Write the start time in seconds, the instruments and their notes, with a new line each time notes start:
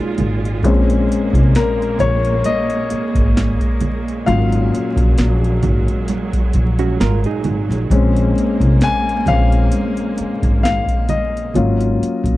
Already playing: string section A#2 G#3 F4, grand piano F#3 A#3 C#4 F4, hollow-body jazz guitar D#4 G#4
0.18 upright bass G#1, closed hi-hat, muted conga, high conga, low conga
0.45 closed hi-hat
0.63 upright bass A#1, grand piano G#3 C4 C#4, string section A#3, kick, closed hi-hat, muted conga, low conga
0.90 closed hi-hat
1.09 closed hi-hat, muted conga
1.33 upright bass C2, kick, closed hi-hat
1.55 grand piano A#4, snare, closed hi-hat
1.82 closed hi-hat
1.99 upright bass A#1, grand piano C#5, kick, closed hi-hat, muted conga, low conga
2.25 closed hi-hat
2.44 grand piano D#5, closed hi-hat, muted conga, high conga
2.70 closed hi-hat
2.90 muted upright bass stroke, closed hi-hat, muted conga
3.15 upright bass G#1, kick, closed hi-hat
3.37 snare, closed hi-hat, high conga
3.60 kick, closed hi-hat
3.81 closed hi-hat, muted conga, high conga, low conga
4.08 closed hi-hat
4.26 upright bass G#1, string section F#3, grand piano F#3 A#3 C#4 F4 F5, closed hi-hat, muted conga, low conga
4.52 closed hi-hat
4.73 muted upright bass stroke, closed hi-hat
4.96 upright bass A#1, kick, closed hi-hat
5.18 upright bass A#1, snare, closed hi-hat
5.44 closed hi-hat
5.63 upright bass G#1, kick, closed hi-hat, muted conga, low conga
5.88 closed hi-hat
6.08 snare, closed hi-hat, muted conga, high conga
6.33 kick, closed hi-hat
6.53 upright bass A#1, kick, closed hi-hat
6.79 hollow-body jazz guitar C#4 F#4, closed hi-hat
7.00 upright bass G#1, hollow-body jazz guitar F4 A#4, snare, closed hi-hat, muted conga, high conga
7.24 hollow-body jazz guitar D#4 G#4, closed hi-hat
7.44 upright bass G#1, closed hi-hat, muted conga, high conga, low conga
7.70 upright bass A#1, snare, closed hi-hat
7.90 upright bass A#1, grand piano G#3 C4 C#4, string section A#3, kick, closed hi-hat, low conga
8.16 closed hi-hat
8.36 closed hi-hat, muted conga
8.60 upright bass C2, kick, closed hi-hat
8.81 grand piano G#5, snare, closed hi-hat, muted conga
9.09 closed hi-hat
9.26 upright bass A#1, grand piano G#3 C4 C#4 F5, kick, closed hi-hat, low conga
9.52 closed hi-hat
9.72 closed hi-hat, muted conga, high conga
9.97 closed hi-hat
10.18 muted upright bass stroke, closed hi-hat, muted conga
10.43 upright bass G#1, kick, closed hi-hat
10.63 grand piano F5, snare, closed hi-hat, high conga
10.88 kick, closed hi-hat
11.09 grand piano D#5, closed hi-hat, muted conga, high conga, low conga
11.37 closed hi-hat
11.54 upright bass G#1, grand piano F#3 A#3 C#4 F4, closed hi-hat, low conga
11.80 closed hi-hat
12.01 muted upright bass stroke, closed hi-hat
12.24 upright bass A#1, kick, closed hi-hat